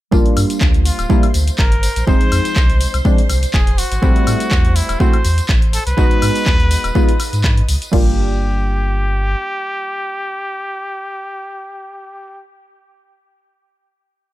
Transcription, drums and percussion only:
0.12 kick, tambourine
0.26 closed hi-hat
0.37 open hi-hat, tambourine, high woodblock
0.50 closed hi-hat, tambourine
0.61 kick, clap, tambourine
0.74 closed hi-hat
0.85 open hi-hat, tambourine
0.99 closed hi-hat, tambourine, high woodblock
1.10 kick, tambourine
1.23 closed hi-hat, high woodblock
1.34 open hi-hat, tambourine
1.48 closed hi-hat, tambourine
1.59 kick, clap, tambourine
1.72 closed hi-hat
1.83 open hi-hat, tambourine
1.96 closed hi-hat, tambourine
2.07 kick, tambourine
2.21 closed hi-hat
2.32 open hi-hat, tambourine, high woodblock
2.45 closed hi-hat, tambourine
2.56 kick, clap, tambourine
2.70 closed hi-hat
2.81 open hi-hat, tambourine
2.94 closed hi-hat, tambourine, high woodblock
3.05 kick, tambourine
3.18 closed hi-hat
3.30 open hi-hat, tambourine, high woodblock
3.43 closed hi-hat, tambourine
3.54 kick, clap, tambourine
3.67 closed hi-hat
3.78 open hi-hat, tambourine
3.92 closed hi-hat, tambourine
4.03 kick, tambourine
4.16 closed hi-hat
4.27 open hi-hat, tambourine, high woodblock
4.40 closed hi-hat, tambourine
4.51 kick, clap, tambourine
4.65 closed hi-hat
4.76 open hi-hat, tambourine
4.89 closed hi-hat, tambourine, high woodblock
5.00 kick, tambourine
5.13 closed hi-hat, high woodblock
5.25 open hi-hat, tambourine
5.38 closed hi-hat, tambourine
5.49 kick, clap, tambourine
5.62 closed hi-hat
5.73 open hi-hat, tambourine
5.87 closed hi-hat, tambourine
5.98 kick, tambourine
6.11 closed hi-hat
6.22 open hi-hat, tambourine, high woodblock
6.35 closed hi-hat, tambourine
6.46 kick, clap, tambourine
6.60 closed hi-hat
6.71 open hi-hat, tambourine
6.84 closed hi-hat, tambourine, high woodblock
6.95 kick, tambourine
7.09 closed hi-hat
7.20 open hi-hat, tambourine, high woodblock
7.33 closed hi-hat, tambourine
7.44 kick, clap, tambourine
7.57 closed hi-hat
7.69 open hi-hat, tambourine
7.82 closed hi-hat, tambourine
7.93 kick, crash

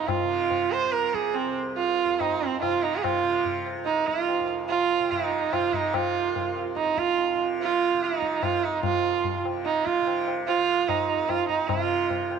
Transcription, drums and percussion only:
0.08 tabla na, tabla ge
0.51 tabla tin, tabla ge
0.72 tabla na
0.93 tabla te
1.04 tabla te
1.14 tabla ke
1.25 tabla te
1.35 tabla na
1.78 tabla tin
2.20 tabla na, tabla ge
2.42 tabla te
2.62 tabla na, tabla ge
2.83 tabla te
3.04 tabla na, tabla ge
3.45 tabla tin, tabla ge
3.66 tabla na
3.87 tabla te
3.98 tabla te
4.08 tabla ke
4.18 tabla te
4.29 tabla na
4.70 tabla tin
4.91 tabla na
5.11 tabla na, tabla ge
5.32 tabla te
5.53 tabla na, tabla ge
5.73 tabla ge
5.94 tabla na, tabla ge
6.36 tabla tin, tabla ge
6.56 tabla na
6.77 tabla te
6.87 tabla te
6.98 tabla ke
7.08 tabla te
7.18 tabla te
7.39 tabla te
7.60 tabla tin
8.02 tabla te
8.12 tabla te
8.22 tabla ke
8.33 tabla te
8.43 tabla na, tabla ge
8.63 tabla te
8.83 tabla na, tabla ge
9.24 tabla tin, tabla ge
9.45 tabla na
9.66 tabla te
9.76 tabla te
9.87 tabla ke
9.97 tabla te
10.07 tabla na
10.28 tabla na
10.48 tabla tin
10.89 tabla na, tabla ge
11.09 tabla te
11.29 tabla na, tabla ge
11.48 tabla ge
11.69 tabla na, tabla ge
12.10 tabla tin, tabla ge
12.31 tabla na

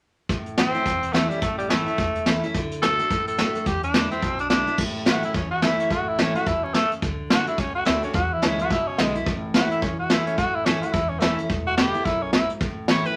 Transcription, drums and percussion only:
0.29 kick, closed hi-hat
0.46 closed hi-hat
0.58 snare, closed hi-hat
0.74 closed hi-hat
0.86 kick, closed hi-hat
1.03 closed hi-hat
1.14 snare, closed hi-hat
1.31 closed hi-hat
1.42 kick, closed hi-hat
1.59 closed hi-hat
1.70 snare, closed hi-hat
1.87 closed hi-hat
1.98 kick, closed hi-hat
2.15 closed hi-hat
2.26 snare, closed hi-hat
2.43 closed hi-hat
2.54 kick, closed hi-hat
2.71 closed hi-hat
2.82 snare, closed hi-hat
2.99 closed hi-hat
3.10 kick, closed hi-hat
3.27 closed hi-hat
3.38 snare, closed hi-hat
3.55 closed hi-hat
3.66 kick, closed hi-hat
3.83 closed hi-hat
3.94 snare, closed hi-hat
4.11 closed hi-hat
4.22 kick, closed hi-hat
4.39 closed hi-hat
4.50 snare, closed hi-hat
4.67 closed hi-hat
4.78 kick, crash
5.06 snare, closed hi-hat
5.23 closed hi-hat
5.34 kick, closed hi-hat
5.62 snare, closed hi-hat
5.80 closed hi-hat
5.90 kick, closed hi-hat
6.19 snare, closed hi-hat
6.35 closed hi-hat
6.47 kick, closed hi-hat
6.74 snare, closed hi-hat
6.91 closed hi-hat
7.02 kick, closed hi-hat
7.30 snare, closed hi-hat
7.47 closed hi-hat
7.58 kick, closed hi-hat
7.86 snare, closed hi-hat
8.03 closed hi-hat
8.14 kick, closed hi-hat
8.42 snare, closed hi-hat
8.59 closed hi-hat
8.71 kick, closed hi-hat
8.98 snare, closed hi-hat
9.15 closed hi-hat
9.26 kick, closed hi-hat
9.54 snare, closed hi-hat
9.71 closed hi-hat
9.82 kick, closed hi-hat
10.10 snare, closed hi-hat
10.27 closed hi-hat
10.38 kick, closed hi-hat
10.66 snare, closed hi-hat
10.83 closed hi-hat
10.94 kick, closed hi-hat
11.22 snare, closed hi-hat
11.38 closed hi-hat
11.50 kick, closed hi-hat
11.78 snare, closed hi-hat
11.94 closed hi-hat
12.05 kick, closed hi-hat
12.33 snare, closed hi-hat
12.49 closed hi-hat
12.61 kick, closed hi-hat
12.88 snare, closed hi-hat
13.05 closed hi-hat

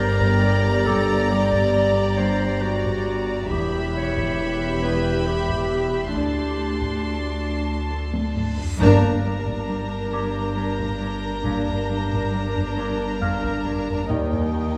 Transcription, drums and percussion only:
0.20 taiko
0.86 taiko
1.52 taiko
2.84 taiko
3.51 taiko
4.17 taiko
5.49 taiko
6.15 taiko
6.81 taiko
8.14 taiko high
8.35 taiko low-mid
8.58 taiko low
8.81 taiko
9.46 taiko
10.79 taiko
11.45 taiko
11.67 taiko low
12.11 taiko
12.55 taiko low
13.21 taiko low
13.43 taiko
13.65 taiko low
13.87 taiko low
14.10 taiko
14.32 taiko low

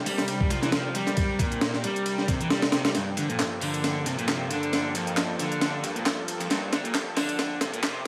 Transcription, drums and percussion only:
0.06 closed hi-hat, open hi-hat
0.18 snare, closed hi-hat
0.28 closed hi-hat, ride
0.40 kick
0.50 closed hi-hat, ride
0.62 snare, closed hi-hat
0.72 snare, closed hi-hat, ride
0.95 closed hi-hat, ride
1.07 snare, closed hi-hat
1.17 kick, closed hi-hat, ride
1.39 kick, closed hi-hat, ride
1.52 closed hi-hat
1.61 snare, closed hi-hat, ride
1.74 snare
1.84 closed hi-hat, ride
1.96 closed hi-hat
2.06 closed hi-hat, ride
2.18 snare
2.28 kick, closed hi-hat, ride
2.41 closed hi-hat
2.50 snare, closed hi-hat, ride
2.62 snare, ride
2.72 snare, closed hi-hat, ride
2.85 snare, closed hi-hat, ride
2.95 snare, closed hi-hat, ride
3.17 closed hi-hat, ride
3.30 closed hi-hat
3.39 snare, clap, closed hi-hat, ride
3.61 closed hi-hat, open hi-hat
3.74 closed hi-hat
3.84 snare, closed hi-hat, ride
4.06 closed hi-hat, ride
4.19 closed hi-hat
4.28 snare, clap, closed hi-hat, ride
4.51 closed hi-hat, ride
4.63 closed hi-hat
4.73 snare, closed hi-hat, ride
4.95 closed hi-hat, ride
5.07 closed hi-hat
5.17 snare, clap, closed hi-hat, ride
5.39 closed hi-hat, ride
5.52 closed hi-hat
5.61 snare, closed hi-hat, ride
5.84 closed hi-hat, ride
5.96 closed hi-hat
6.06 snare, clap, closed hi-hat, ride
6.28 closed hi-hat, ride
6.40 closed hi-hat, ride
6.50 snare, closed hi-hat, ride
6.73 snare, closed hi-hat, ride
6.85 closed hi-hat
6.95 snare, clap, closed hi-hat, ride
7.17 snare, closed hi-hat, open hi-hat
7.29 closed hi-hat
7.39 snare, closed hi-hat, ride
7.61 snare, closed hi-hat, ride
7.74 closed hi-hat
7.83 snare, clap, closed hi-hat, ride

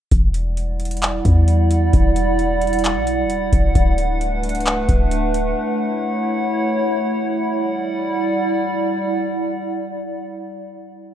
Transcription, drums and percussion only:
0.11 kick, closed hi-hat
0.34 closed hi-hat
0.57 closed hi-hat
0.80 closed hi-hat
0.85 closed hi-hat
0.91 closed hi-hat
0.97 closed hi-hat
1.02 clap, closed hi-hat
1.25 kick, closed hi-hat
1.48 closed hi-hat
1.71 closed hi-hat
1.93 kick, closed hi-hat
2.16 closed hi-hat
2.39 closed hi-hat
2.61 closed hi-hat, open hi-hat
2.67 closed hi-hat
2.73 closed hi-hat
2.79 closed hi-hat
2.84 clap, closed hi-hat
3.07 closed hi-hat
3.30 closed hi-hat
3.53 kick, closed hi-hat
3.75 kick, closed hi-hat
3.98 closed hi-hat
4.21 closed hi-hat
4.43 closed hi-hat
4.49 closed hi-hat
4.55 closed hi-hat
4.61 closed hi-hat
4.66 clap, closed hi-hat
4.89 kick, closed hi-hat
5.11 closed hi-hat
5.34 closed hi-hat

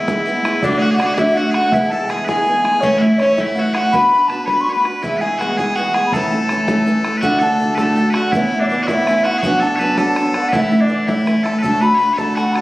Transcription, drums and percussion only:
0.08 bodhran
0.45 bodhran
0.63 bodhran
1.00 bodhran
1.18 bodhran
1.54 bodhran
1.72 bodhran
2.10 bodhran
2.29 bodhran
2.65 bodhran
2.83 bodhran
3.20 bodhran
3.38 bodhran
3.75 bodhran
3.93 bodhran
4.30 bodhran
4.48 bodhran
4.85 bodhran
5.04 bodhran
5.41 bodhran
5.59 bodhran
5.94 bodhran
6.12 bodhran
6.49 bodhran
6.68 bodhran
7.05 bodhran
7.23 bodhran
7.41 bodhran
7.78 bodhran
8.14 bodhran
8.33 bodhran
8.52 bodhran
8.88 bodhran
9.07 bodhran
9.25 bodhran
9.43 bodhran
9.61 bodhran
9.98 bodhran
10.16 bodhran
10.34 bodhran
10.53 bodhran
10.72 bodhran
11.08 bodhran
11.27 bodhran
11.46 bodhran
11.64 bodhran
11.82 bodhran
12.18 bodhran
12.37 bodhran
12.55 bodhran

